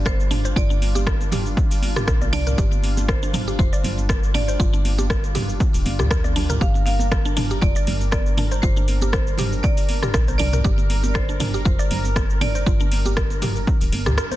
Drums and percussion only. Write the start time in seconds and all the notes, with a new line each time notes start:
0.05 kick, cross-stick, high conga, shaker
0.20 shaker
0.31 mid tom, open hi-hat, muted conga, high conga, shaker
0.45 shaker
0.56 kick, shaker
0.71 muted conga, shaker
0.82 open hi-hat, high conga, shaker
0.95 high conga, shaker
1.07 kick, cross-stick, shaker
1.21 muted conga, shaker
1.32 mid tom, open hi-hat, high conga, low conga, shaker
1.46 shaker
1.57 kick, muted conga, shaker
1.71 open hi-hat, shaker
1.82 open hi-hat, high conga, shaker
1.96 cross-stick, mid tom, muted conga, shaker
2.08 kick, cross-stick, shaker
2.22 high conga, shaker
2.33 open hi-hat, muted conga, low conga, shaker
2.46 mid tom, high conga, shaker
2.58 kick, shaker
2.72 muted conga, shaker
2.83 open hi-hat, high conga, shaker
2.97 high conga, shaker
3.09 kick, cross-stick, shaker
3.22 muted conga, shaker
3.33 mid tom, open hi-hat, high conga, low conga, shaker
3.48 shaker
3.59 kick, muted conga, shaker
3.73 shaker
3.84 open hi-hat, high conga, low conga, shaker
3.98 muted conga, shaker
4.09 kick, cross-stick, high conga, shaker
4.23 shaker
4.35 mid tom, open hi-hat, muted conga, high conga, shaker
4.48 shaker
4.60 kick, shaker
4.74 muted conga, shaker
4.85 open hi-hat, high conga, shaker
4.98 high conga, shaker
5.10 kick, cross-stick, shaker
5.24 muted conga, shaker
5.35 mid tom, open hi-hat, high conga, low conga, shaker
5.49 shaker
5.60 kick, muted conga, shaker
5.74 open hi-hat, shaker
5.86 open hi-hat, high conga, shaker
6.00 cross-stick, mid tom, muted conga, shaker
6.11 kick, cross-stick, shaker
6.25 high conga, shaker
6.36 open hi-hat, muted conga, low conga, shaker
6.50 mid tom, high conga, shaker
6.61 kick, shaker
6.75 muted conga, shaker
6.86 open hi-hat, high conga, shaker
6.99 high conga, shaker
7.12 kick, cross-stick, shaker
7.25 muted conga, shaker
7.37 mid tom, open hi-hat, high conga, low conga, shaker
7.50 shaker
7.61 kick, muted conga, shaker
7.76 shaker
7.87 open hi-hat, high conga, low conga, shaker
8.01 muted conga, shaker
8.12 kick, cross-stick, high conga, shaker
8.26 shaker
8.37 mid tom, open hi-hat, muted conga, high conga, shaker
8.51 shaker
8.63 kick, shaker
8.76 muted conga, shaker
8.88 open hi-hat, high conga, shaker
9.02 high conga, shaker
9.13 kick, cross-stick, shaker
9.27 muted conga, shaker
9.38 mid tom, open hi-hat, high conga, low conga, shaker
9.52 shaker
9.64 kick, muted conga, shaker
9.77 open hi-hat, shaker
9.89 open hi-hat, high conga, shaker
10.03 cross-stick, mid tom, muted conga, shaker
10.14 kick, cross-stick, shaker
10.28 high conga, shaker
10.38 open hi-hat, muted conga, low conga, shaker
10.53 mid tom, high conga, shaker
10.65 kick, shaker
10.78 muted conga, shaker
10.90 open hi-hat, high conga, shaker
11.04 high conga, shaker
11.15 kick, cross-stick, shaker
11.28 muted conga, shaker
11.40 mid tom, open hi-hat, high conga, low conga, shaker
11.54 shaker
11.66 kick, muted conga, shaker
11.79 shaker
11.91 open hi-hat, high conga, low conga, shaker
12.04 muted conga, shaker
12.16 kick, cross-stick, high conga, shaker
12.30 shaker
12.41 mid tom, open hi-hat, muted conga, high conga, shaker
12.55 shaker
12.66 kick, shaker
12.80 muted conga, shaker
12.92 open hi-hat, high conga, shaker
13.05 high conga, shaker
13.17 kick, cross-stick, shaker
13.30 muted conga, shaker
13.42 mid tom, open hi-hat, high conga, low conga, shaker
13.56 shaker
13.67 kick, muted conga, shaker
13.81 open hi-hat, shaker
13.92 open hi-hat, high conga, shaker
14.06 cross-stick, mid tom, muted conga, shaker
14.18 cross-stick, shaker
14.31 high conga, shaker